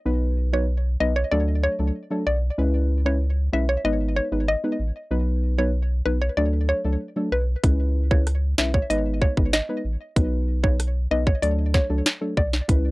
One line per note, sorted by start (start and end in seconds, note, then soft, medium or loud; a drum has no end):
0.05 0.96 B1 loud
0.05 0.49 F#3 medium
0.05 0.49 B3 medium
0.05 0.49 D#4 medium
0.05 0.49 B4 loud
0.53 0.65 F#3 medium
0.53 0.65 B3 medium
0.53 0.65 D#4 medium
0.53 0.66 B4 medium
0.53 0.65 C#5 medium
1.00 1.24 B1 medium
1.00 1.13 F#3 medium
1.00 1.13 B3 medium
1.00 1.13 D#4 medium
1.00 1.13 B4 medium
1.00 1.12 D#5 medium
1.16 1.28 C#5 medium
1.31 1.68 D2 medium
1.31 1.76 F#3 medium
1.31 1.76 A3 medium
1.31 1.76 D4 medium
1.31 1.76 A4 loud
1.31 1.44 D5 medium
1.64 1.75 C#5 medium
1.79 1.91 C#2 medium
1.79 1.92 F#3 medium
1.79 1.92 A3 medium
1.79 1.92 D4 medium
1.79 1.92 A4 medium
2.10 2.23 F#3 medium
2.10 2.23 A3 medium
2.10 2.23 D4 medium
2.10 2.23 A4 medium
2.27 2.50 B1 loud
2.27 2.39 D5 medium
2.58 3.49 C#2 loud
2.58 3.02 G#3 loud
2.58 3.02 C#4 medium
2.58 3.02 E4 medium
2.58 3.02 B4 loud
3.05 3.18 G#3 medium
3.05 3.18 C#4 medium
3.05 3.18 E4 medium
3.05 3.18 B4 medium
3.05 3.18 C#5 medium
3.53 3.77 B1 medium
3.53 3.65 G#3 medium
3.53 3.65 C#4 medium
3.53 3.65 E4 medium
3.53 3.66 B4 medium
3.53 3.65 E5 medium
3.69 3.81 C#5 medium
3.84 4.20 G#1 loud
3.84 4.28 G#3 medium
3.84 4.28 B3 medium
3.84 4.28 D#4 medium
3.84 4.28 B4 loud
3.84 3.97 D#5 medium
4.16 4.28 C#5 medium
4.32 4.56 G#1 medium
4.32 4.44 G#3 medium
4.32 4.44 B3 medium
4.32 4.44 D#4 medium
4.32 4.45 B4 medium
4.48 4.93 D#5 medium
4.64 4.76 G#3 medium
4.64 4.76 B3 medium
4.64 4.76 D#4 medium
4.64 4.76 B4 medium
4.79 4.91 A1 medium
5.11 6.02 B1 loud
5.11 5.54 F#3 medium
5.11 5.54 B3 medium
5.11 5.55 D#4 medium
5.11 5.55 B4 loud
5.58 5.71 F#3 medium
5.58 5.71 B3 medium
5.58 5.71 D#4 medium
5.58 5.71 B4 medium
5.58 5.70 C#5 medium
6.05 6.29 B1 medium
6.05 6.18 F#3 medium
6.05 6.18 B3 medium
6.05 6.18 D#4 medium
6.05 6.17 B4 medium
6.05 6.18 B4 medium
6.22 6.33 C#5 medium
6.37 6.73 D2 medium
6.37 6.81 F#3 medium
6.37 6.81 A3 medium
6.37 6.81 D4 medium
6.37 6.81 A4 loud
6.37 6.49 D5 medium
6.69 6.81 C#5 medium
6.85 6.97 C#2 medium
6.85 6.97 F#3 medium
6.85 6.97 A3 medium
6.85 6.97 D4 medium
6.85 6.97 A4 medium
7.16 7.28 F#3 medium
7.16 7.29 A3 medium
7.16 7.29 D4 medium
7.16 7.29 A4 medium
7.32 7.56 B1 loud
7.32 7.44 B4 medium
7.63 8.54 C#2 loud
7.63 8.07 G#3 medium
7.63 8.07 C#4 medium
7.63 8.07 E4 medium
7.63 8.07 B4 loud
7.63 kick loud
7.63 closed hi-hat medium
8.11 8.23 G#3 medium
8.11 8.23 C#4 medium
8.11 8.23 E4 medium
8.11 8.24 B4 medium
8.11 8.23 C#5 medium
8.11 kick loud
8.27 cross-stick medium
8.27 closed hi-hat medium
8.58 8.82 B1 medium
8.58 8.71 G#3 medium
8.58 8.71 C#4 medium
8.58 8.71 E4 medium
8.58 8.71 B4 medium
8.58 8.70 E5 medium
8.58 snare loud
8.74 8.86 C#5 medium
8.74 kick medium
8.90 9.26 G#1 medium
8.90 9.33 G#3 medium
8.90 9.33 B3 medium
8.90 9.34 D#4 medium
8.90 9.34 B4 loud
8.90 9.02 D#5 medium
8.90 closed hi-hat medium
9.22 9.33 C#5 medium
9.22 kick medium
9.37 9.61 G#1 medium
9.37 9.50 G#3 medium
9.37 9.50 B3 medium
9.37 9.50 D#4 medium
9.37 9.50 B4 medium
9.37 kick medium
9.53 9.98 D#5 medium
9.53 snare loud
9.53 closed hi-hat medium
9.69 9.81 G#3 medium
9.69 9.81 B3 medium
9.69 9.81 D#4 medium
9.69 9.81 B4 medium
9.85 9.97 A1 medium
10.16 11.07 B1 loud
10.16 10.60 F#3 medium
10.16 10.60 B3 medium
10.16 10.60 D#4 medium
10.16 10.60 B4 loud
10.16 kick loud
10.16 closed hi-hat medium
10.63 10.76 F#3 medium
10.63 10.76 B3 medium
10.63 10.76 D#4 medium
10.63 10.76 B4 medium
10.63 10.75 C#5 medium
10.63 kick medium
10.80 cross-stick medium
10.80 closed hi-hat medium
11.11 11.35 B1 medium
11.11 11.23 F#3 medium
11.11 11.23 B3 medium
11.11 11.23 D#4 medium
11.11 11.23 B4 medium
11.11 11.23 D#5 medium
11.27 11.39 C#5 medium
11.27 kick medium
11.42 11.78 D2 medium
11.42 11.86 F#3 medium
11.42 11.86 A3 medium
11.42 11.86 D4 medium
11.42 11.86 A4 loud
11.42 11.54 D5 medium
11.42 closed hi-hat medium
11.74 11.86 C#5 medium
11.74 kick medium
11.74 snare medium
11.90 12.02 C#2 medium
11.90 12.02 F#3 medium
11.90 12.02 A3 medium
11.90 12.02 D4 medium
11.90 12.02 A4 medium
12.06 snare loud
12.06 closed hi-hat medium
12.21 12.34 F#3 medium
12.21 12.34 A3 medium
12.21 12.34 D4 medium
12.21 12.34 A4 medium
12.37 12.61 B1 loud
12.37 12.49 D5 medium
12.37 kick medium
12.53 snare medium
12.68 12.91 C#2 loud
12.68 12.91 G#3 medium
12.68 12.91 C#4 medium
12.68 12.91 E4 medium
12.68 12.91 B4 loud
12.68 kick loud
12.68 closed hi-hat medium